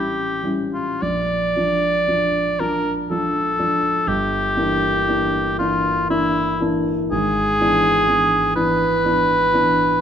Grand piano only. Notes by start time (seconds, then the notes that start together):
Already playing: G3 C#4 E4
0.43 G3 C#4 E4
1.02 A#1
1.56 F3 D4
2.08 F3 D4
2.60 F3 D4
3.10 F3 D4
3.59 F3 D4
4.07 G1
4.56 E3 A#3 D4
5.08 E3 A#3 D4
5.59 E3 A#3 D4
6.10 E3 A#3 D4
6.60 E3 A#3 D4
7.12 G#1
7.61 E3 B3 D4
8.08 E3 B3 D4
8.56 E3 B3 D4
9.05 E3 B3 D4
9.53 E3 B3 D4